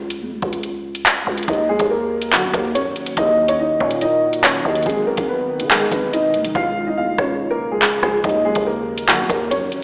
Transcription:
Already playing: 808-style bass C#2
0.10 closed hi-hat
0.21 808-style bass F2
0.32 808-style bass C#2
0.42 808-style bass C#2, kick
0.53 closed hi-hat
0.63 closed hi-hat
0.95 closed hi-hat
1.06 clap
1.27 808-style bass C#2
1.38 closed hi-hat
1.43 closed hi-hat
1.48 808-style bass D#2, ambient pad D#3 F#3 A#3 F#4, grand piano D#4 D#5, kick, closed hi-hat
1.53 closed hi-hat
1.69 grand piano G#3 G#4
1.79 808-style bass D#2, kick, closed hi-hat
1.91 grand piano A#3 A#4
2.22 closed hi-hat
2.32 808-style bass D#3, grand piano F#3 F#4, clap
2.43 808-style bass D#2
2.53 808-style bass D#2, grand piano A#3 A#4, kick, closed hi-hat
2.75 808-style bass F#2, grand piano C#4 C#5, closed hi-hat
2.96 closed hi-hat
3.06 closed hi-hat
3.17 808-style bass D#2, grand piano D#4 D#5, kick, closed hi-hat
3.48 grand piano C#4 C#5, closed hi-hat
3.60 grand piano D#4 D#5
3.80 808-style bass A#2, grand piano C#4 C#5, kick
3.91 closed hi-hat
4.01 grand piano D#4 D#5, closed hi-hat
4.33 closed hi-hat
4.44 grand piano C#4 C#5, clap
4.65 808-style bass D#2, grand piano D#4 D#5
4.75 closed hi-hat
4.83 808-style bass G#1, ambient pad B2 G#3 D#4, grand piano G#4, kick, closed hi-hat
4.87 grand piano G#3, closed hi-hat
5.07 grand piano A#3 A#4
5.17 808-style bass G#1, kick, closed hi-hat
5.28 grand piano B3 B4
5.60 808-style bass D#3, closed hi-hat
5.70 grand piano G#3 G#4, clap
5.91 808-style bass G#1, grand piano B3 B4, kick, closed hi-hat
6.13 grand piano D#4 D#5, closed hi-hat
6.34 808-style bass D#2, closed hi-hat
6.45 808-style bass G#1, closed hi-hat
6.55 808-style bass C#2, ambient pad C#3 F3 F4, grand piano F4 F5, kick
6.87 grand piano D#4 D#5
6.97 808-style bass F2, grand piano F4 F5
7.08 808-style bass C#2
7.18 808-style bass C#2, grand piano C#4 C#5, kick, cross-stick
7.51 grand piano A#3 A#4
7.71 grand piano G#3 G#4
7.82 clap
8.03 808-style bass C#2, grand piano G#3 G#4, cross-stick
8.24 808-style bass D#2, ambient pad D#3 F#3 A#3 F#4, grand piano D#4 D#5, kick, closed hi-hat
8.29 closed hi-hat
8.45 grand piano G#3 G#4
8.55 808-style bass D#2, kick, closed hi-hat
8.67 grand piano A#3 A#4
8.98 closed hi-hat
9.08 808-style bass D#3, grand piano F#3 F#4, clap
9.19 808-style bass D#2
9.29 808-style bass D#2, grand piano A#3 A#4, kick, closed hi-hat
9.51 808-style bass F#2, grand piano C#4 C#5, closed hi-hat
9.72 closed hi-hat

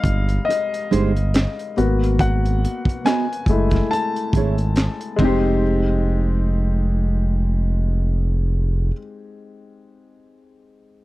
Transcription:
Already playing: grand piano G3 G#3 D#4 D#5 F5
0.04 analog synth bass G1, kick, closed hi-hat
0.29 closed hi-hat
0.45 grand piano D#5, muted nylon-string guitar stroke
0.50 closed hi-hat
0.74 closed hi-hat
0.91 analog synth bass G1, nylon-string guitar G#3 D#4 G4 C5, closed hi-hat
1.16 closed hi-hat
1.34 snare, clap, closed hi-hat
1.59 closed hi-hat
1.77 analog synth bass G#1, grand piano A#3 B3 F#4, closed hi-hat
2.03 closed hi-hat
2.19 grand piano F#5, kick, closed hi-hat
2.45 closed hi-hat
2.65 closed hi-hat
2.85 kick, closed hi-hat
3.05 nylon-string guitar B3 F#4 A#4 D#5, grand piano G#5, snare, clap, closed hi-hat
3.33 closed hi-hat
3.46 analog synth bass F#1, grand piano G#3 A3, kick, closed hi-hat
3.50 grand piano E4
3.71 kick, snare, closed hi-hat
3.91 grand piano A5, muted nylon-string guitar stroke, closed hi-hat
4.16 closed hi-hat
4.33 analog synth bass G#1, nylon-string guitar A3 E4 G#4, kick, closed hi-hat
4.37 nylon-string guitar C#5
4.58 closed hi-hat
4.76 snare, clap, closed hi-hat
5.01 closed hi-hat
5.16 analog synth bass F1, grand piano G#3 C4, nylon-string guitar G#3, kick, ride
5.21 nylon-string guitar D#4 G4 C5, grand piano D#4 G4

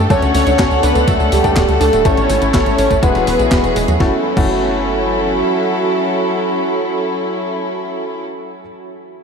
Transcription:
Already playing: analog polysynth A4
0.10 analog synth bass D2, string section D3 A4 F#5, grand piano D3 A3 F#4 A4, synth arpeggio sound F#3, analog polysynth C#4 C#5, kick, closed hi-hat, tambourine
0.22 analog synth bass D2, closed hi-hat, tambourine
0.34 analog synth bass D2, synth arpeggio sound A3, analog polysynth C#4 C#5, open hi-hat, tambourine
0.47 analog synth bass D2, synth arpeggio sound D4, closed hi-hat, tambourine
0.59 analog synth bass D2, synth arpeggio sound F#4, kick, snare, clap, closed hi-hat, tambourine
0.71 analog synth bass D2, tambourine
0.83 analog synth bass D2, analog polysynth B3 B4, synth arpeggio sound D4, open hi-hat, tambourine
0.95 analog synth bass D2, synth arpeggio sound A3, closed hi-hat, tambourine
1.08 analog synth bass D2, synth arpeggio sound F#3, analog polysynth A3 A4, kick, closed hi-hat, tambourine
1.20 analog synth bass D2, tambourine
1.32 analog synth bass D2, analog polysynth G3 G4, synth arpeggio sound A3, open hi-hat, tambourine
1.44 analog synth bass D2, grand piano A3 D4 A4 F#5, synth arpeggio sound D4, kick, closed hi-hat, tambourine
1.56 analog synth bass D1, synth arpeggio sound F#4, kick, snare, clap, closed hi-hat, tambourine
1.69 analog synth bass D2, closed hi-hat, tambourine
1.81 analog synth bass D2, analog polysynth A3 A4, synth arpeggio sound D4, open hi-hat, tambourine
1.93 analog synth bass D1, synth arpeggio sound A3, closed hi-hat, tambourine
2.05 analog synth bass A1, synth arpeggio sound E3, grand piano A3 C#4 E4 A4, string section C#4 E4, analog polysynth C#4 C#5, kick, closed hi-hat, tambourine
2.17 analog synth bass A1, closed hi-hat, tambourine
2.30 analog synth bass A1, synth arpeggio sound A3, open hi-hat, tambourine
2.42 analog synth bass A1, synth arpeggio sound C#4, closed hi-hat, tambourine
2.54 analog synth bass A1, analog polysynth C#4 C#5, synth arpeggio sound E4, kick, snare, clap, closed hi-hat, tambourine
2.66 analog synth bass A1, closed hi-hat, tambourine
2.78 analog synth bass A1, synth arpeggio sound C#4, open hi-hat, tambourine
2.91 analog synth bass A1, synth arpeggio sound A3, kick, closed hi-hat, tambourine
3.03 analog synth bass E1, synth arpeggio sound E3, string section E3 E4 F#4 G#4, grand piano G#3 B3 E4 F#4, analog polysynth B3 B4, kick, closed hi-hat, tambourine
3.15 analog synth bass E1, snare, closed hi-hat, tambourine
3.27 analog synth bass E1, synth arpeggio sound F#3, open hi-hat, tambourine
3.39 analog synth bass B1, synth arpeggio sound G#3, closed hi-hat, tambourine
3.52 analog synth bass E1, synth arpeggio sound B3, kick, snare, clap, closed hi-hat, tambourine
3.64 analog synth bass E1, closed hi-hat, tambourine
3.76 analog synth bass E1, synth arpeggio sound G#3, open hi-hat, tambourine
3.88 analog synth bass E2, synth arpeggio sound F#3, closed hi-hat, tambourine
4.00 analog synth bass F#1, synth arpeggio sound E3, string section F#3 C#4 E4 A4, grand piano A3 C#4 E4 F#4, analog polysynth F#4, kick, snare
4.37 analog synth bass F#1, synth arpeggio sound E3, grand piano A3 C#4 E4 F#4, analog polysynth F#4, kick, crash

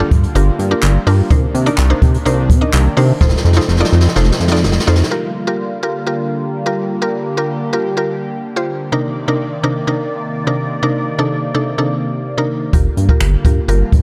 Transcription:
Already playing: analog synth pad D3 G3 A#3 F4
0.00 synth pluck D4 F4 G4 A4
0.11 analog synth bass G2, kick, closed hi-hat
0.23 closed hi-hat
0.35 analog synth bass G1, synth pluck D4 F4 G4 A#4, closed hi-hat
0.59 analog synth bass G2, closed hi-hat
0.71 synth pluck D4 F4 G4 A#4
0.83 analog synth bass G1, clap, closed hi-hat
1.07 analog synth bass G2, synth pluck D4 F4 G4 A#4, open hi-hat
1.30 analog synth bass C2, analog synth pad C3 D#3 D4, synth pluck D4 D#4 A#4 C5, kick, closed hi-hat
1.54 analog synth bass C3, closed hi-hat
1.66 synth pluck D4 D#4 A#4 D5, closed hi-hat
1.78 analog synth bass C2, clap, closed hi-hat
1.90 synth pluck D4 D#4 A#4 C5
2.02 analog synth bass C3, kick, closed hi-hat
2.14 closed hi-hat
2.25 analog synth bass C2, synth pluck D4 D#4 A#4 C5, closed hi-hat
2.50 analog synth bass C3, kick, closed hi-hat
2.61 synth pluck D4 D#4 A#4 D#5
2.73 analog synth bass C2, clap, closed hi-hat
2.97 analog synth bass C3, synth pluck D4 D#4 A#4 C5, open hi-hat
3.21 analog synth bass F1, analog synth pad F3 A3 D#4, synth pluck D#4 F4 A4 C5, kick, snare
3.29 snare
3.37 snare
3.45 analog synth bass F2, snare
3.53 synth pluck D#4 F4 A4, snare
3.57 synth pluck C5, snare
3.69 analog synth bass F1, snare
3.77 synth pluck D#4 F4 A4 D5, snare
3.85 snare
3.93 analog synth bass F2, snare
4.00 snare
4.08 snare
4.16 analog synth bass F1, synth pluck D#4 F4 A4 C5, snare
4.24 snare
4.32 snare
4.40 analog synth bass F2, snare
4.48 synth pluck D#4 F4 A4, snare
4.52 synth pluck D5, snare
4.64 analog synth bass F1, snare
4.72 snare
4.80 snare
4.87 analog synth bass F2, synth pluck D#4 F4 A4 C5, snare
4.96 snare
5.03 snare
5.11 analog synth pad D3 G3 A#3 F4, synth pluck F4 G4 A#4
5.47 synth pluck F4 G4 A#4
5.83 synth pluck F4 G4 A#4
6.07 synth pluck F4 G4 A#4
6.66 synth pluck F4 G4 A#4
7.02 synth pluck F4 G4 A#4, analog synth pad G4
7.37 synth pluck F4 G4 A#4
7.73 synth pluck F4 G4 A#4
7.97 synth pluck F4 G4 A#4
8.56 synth pluck F4 G4 C5
8.92 synth pluck C3 D4 D#4 A#4, analog synth pad C3 D#3 A#3 D5
9.28 synth pluck C3 D4 D#4 A#4
9.63 synth pluck C3 D4 D#4 A#4
9.87 synth pluck C3 D4 D#4 A#4
10.47 synth pluck C3 D4 D#4 A#4
10.83 synth pluck C3 D4 D#4 A#4
11.18 synth pluck C3 D4 D#4 A4
11.54 synth pluck C3 D4 D#4 A4
11.78 synth pluck C3 D4 D#4 A4
12.38 synth pluck C3 D4 D#4 A#4
12.73 analog synth bass G1, analog synth pad D3 G3 F4, synth pluck F4 G4 A#4, kick, closed hi-hat
12.97 analog synth bass G2, closed hi-hat
13.09 synth pluck F4 G4 A#4, kick
13.21 analog synth bass G1, finger snap, closed hi-hat
13.45 analog synth bass G2, synth pluck F4 G4 A#4, kick, closed hi-hat
13.68 analog synth bass G1, synth pluck F4 G4 A#4, closed hi-hat
13.92 analog synth bass G2, kick, closed hi-hat

